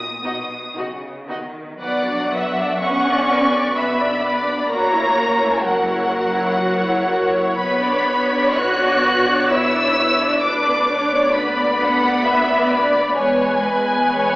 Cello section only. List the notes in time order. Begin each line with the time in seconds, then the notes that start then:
Already playing: A#2
0.24 B2
0.76 C#3
1.28 D#3
1.79 F#3
2.82 C#4
3.76 B3
4.69 A#3
5.64 F#3
7.57 B3
8.56 F#4
9.51 E4
10.44 D4
11.36 B3
13.16 G#3